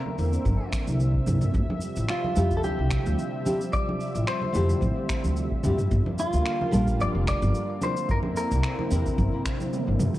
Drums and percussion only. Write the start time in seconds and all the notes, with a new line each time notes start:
0.06 high conga, low conga
0.18 cabasa
0.33 cabasa
0.45 kick, high conga, cabasa
0.73 finger snap, kick, cabasa
0.87 high conga, cabasa
1.00 cabasa
1.15 kick
1.27 mid tom, high conga, cabasa
1.41 mid tom, cabasa
1.54 kick, mid tom, cabasa
1.70 high conga
1.81 cabasa
1.96 cabasa
2.09 finger snap, cabasa
2.24 high conga, low conga
2.36 cabasa
2.51 kick, cabasa
2.64 high conga, cabasa
2.90 finger snap, kick, cabasa
3.06 high conga, cabasa
3.19 cabasa
3.46 high conga, cabasa
3.61 cabasa
3.73 kick, cabasa
3.89 high conga
4.00 cabasa
4.15 cabasa
4.27 finger snap, cabasa
4.42 high conga, low conga
4.54 cabasa
4.70 cabasa
4.81 kick, high conga, cabasa
5.09 finger snap, kick, cabasa
5.24 high conga, cabasa
5.37 cabasa
5.51 kick
5.64 mid tom, high conga, cabasa
5.78 mid tom, cabasa
5.91 kick, mid tom, cabasa
6.06 high conga
6.18 cabasa
6.33 cabasa
6.45 finger snap, cabasa
6.61 high conga, low conga
6.73 cabasa
6.87 kick, cabasa
7.00 high conga, cabasa
7.27 finger snap, kick, cabasa
7.42 high conga, cabasa
7.55 cabasa
7.82 high conga, cabasa
7.97 cabasa
8.09 kick, mid tom, cabasa
8.23 high conga
8.37 cabasa
8.51 cabasa
8.63 finger snap, cabasa
8.78 high conga, low conga
8.91 cabasa
9.06 kick, cabasa
9.18 kick, high conga, cabasa
9.45 finger snap, kick, cabasa
9.60 high conga, cabasa
9.73 high tom, cabasa
9.87 high tom
10.00 mid tom, high conga, cabasa
10.15 mid tom, cabasa